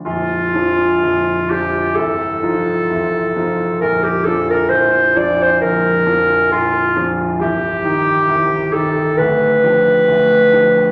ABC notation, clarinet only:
X:1
M:4/4
L:1/16
Q:1/4=66
K:Bb
V:1 name="Clarinet"
F6 G2 A8 | B G A B c2 d c B4 F3 z | G6 A2 =B8 |]